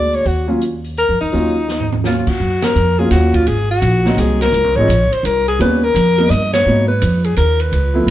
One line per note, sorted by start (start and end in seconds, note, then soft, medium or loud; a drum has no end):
0.00 0.23 D2 medium
0.00 0.23 G#3 medium
0.00 0.23 A#3 medium
0.00 0.24 D4 soft
0.00 0.24 F#4 medium
0.00 0.16 D5 medium
0.13 0.28 C#5 medium
0.13 open hi-hat soft
0.25 1.05 D#2 medium
0.25 0.49 F#4 medium
0.25 open hi-hat soft
0.47 0.60 F#3 medium
0.47 0.60 A#3 medium
0.47 0.60 C#4 medium
0.47 0.60 F4 medium
0.62 closed hi-hat soft
0.84 open hi-hat soft
0.97 1.19 A#4 medium
0.97 closed hi-hat soft
1.09 1.20 F2 medium
1.20 1.32 E2 medium
1.20 2.01 D#4 medium
1.20 open hi-hat soft
1.32 2.23 D#2 medium
1.32 1.53 F#3 medium
1.32 1.54 A#3 medium
1.32 1.54 C#4 medium
1.32 1.54 F4 medium
1.32 open hi-hat soft
1.69 snare soft
1.80 floor tom soft
1.92 floor tom medium
2.04 2.25 F#3 soft
2.04 2.25 A#3 soft
2.04 2.25 C#4 soft
2.04 2.26 F4 medium
2.04 2.18 F4 medium
2.04 snare soft
2.19 2.29 F4 medium
2.27 2.65 F#4 medium
2.27 muted upright bass stroke soft
2.27 kick medium
2.27 crash medium
2.40 2.74 F#2 medium
2.62 3.00 A#4 medium
2.62 snare medium
2.62 ride medium
2.75 3.10 F2 medium
2.75 hi-hat pedal soft
2.99 3.44 F#3 medium
2.99 3.45 A#3 medium
2.99 3.45 C#4 medium
2.99 3.45 F4 medium
2.99 3.11 G#4 medium
3.11 3.46 D#2 medium
3.11 3.36 F#4 medium
3.11 snare soft
3.11 hi-hat pedal medium
3.11 ride medium
3.34 3.48 F4 medium
3.34 kick medium
3.34 ride soft
3.47 3.81 G#1 medium
3.47 3.70 G#4 medium
3.47 ride medium
3.71 4.21 F#4 medium
3.82 4.16 A#1 medium
3.82 ride medium
4.05 4.51 F#3 medium
4.05 4.51 A#3 medium
4.05 4.51 C4 medium
4.05 4.51 D#4 medium
4.05 snare soft
4.17 4.52 C2 medium
4.17 4.41 G#4 medium
4.17 hi-hat pedal medium
4.17 ride medium
4.41 4.77 A#4 medium
4.41 snare soft
4.41 ride soft
4.52 4.64 C#2 medium
4.52 ride medium
4.64 4.75 C2 medium
4.76 4.87 G#1 medium
4.76 4.88 F3 medium
4.76 4.88 G#3 medium
4.76 4.89 C4 medium
4.76 4.89 D#4 medium
4.76 5.14 C#5 loud
4.88 5.09 A#1 medium
4.88 hi-hat pedal medium
4.88 ride medium
5.11 5.27 C5 medium
5.11 muted upright bass stroke soft
5.11 ride soft
5.23 5.58 C2 medium
5.23 5.47 A#4 medium
5.23 hi-hat pedal soft
5.23 ride medium
5.48 5.59 G#4 medium
5.48 ride soft
5.59 5.94 D#2 medium
5.59 5.80 G3 medium
5.59 5.81 A#3 medium
5.59 5.81 B3 medium
5.59 5.81 C#4 medium
5.59 5.85 B4 medium
5.59 ride medium
5.83 6.32 A#4 medium
5.94 6.29 F2 medium
5.94 hi-hat pedal medium
5.94 ride medium
6.18 6.30 G3 medium
6.18 6.30 A#3 medium
6.18 6.30 B3 medium
6.18 6.31 D#4 medium
6.18 ride soft
6.30 6.65 G2 medium
6.30 6.52 D#5 medium
6.30 hi-hat pedal medium
6.30 ride medium
6.53 6.86 C#5 loud
6.53 snare medium
6.53 ride medium
6.66 7.01 G#2 medium
6.66 6.87 F#3 medium
6.66 6.87 A#3 medium
6.66 6.88 B3 soft
6.66 6.88 D#4 medium
6.88 7.26 B4 medium
7.02 7.36 F2 medium
7.02 hi-hat pedal medium
7.02 ride medium
7.24 7.36 G#4 medium
7.24 ride soft
7.37 7.71 D#2 medium
7.37 7.62 A#4 medium
7.37 hi-hat pedal soft
7.37 ride medium
7.60 8.11 B4 medium
7.60 ride soft
7.72 8.06 C#2 medium
7.72 ride medium
7.94 8.06 F3 medium
7.94 8.06 A3 medium
7.94 8.07 B3 medium
7.94 8.07 E4 medium
8.07 8.11 B1 medium